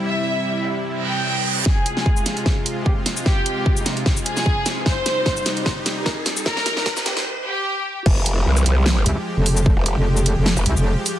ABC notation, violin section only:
X:1
M:4/4
L:1/8
Q:"Swing 16ths" 1/4=150
K:Fm
V:1 name="Violin section"
=e3 e z g3 | A4 A z G z | G3 E z A3 | c4 c z B z |
B3 G z G3 | z8 | z8 |]